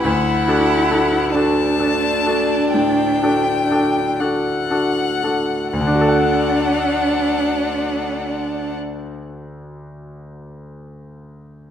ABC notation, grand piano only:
X:1
M:4/4
L:1/8
Q:1/4=40
K:D
V:1 name="Grand piano"
(3D,, [DFA] [DFA] (3[DFA] [DFA] [DFA] (3A,, [DFA] [DFA] (3[DFA] [DFA] [DFA] | [D,,D,DFAf]8 |]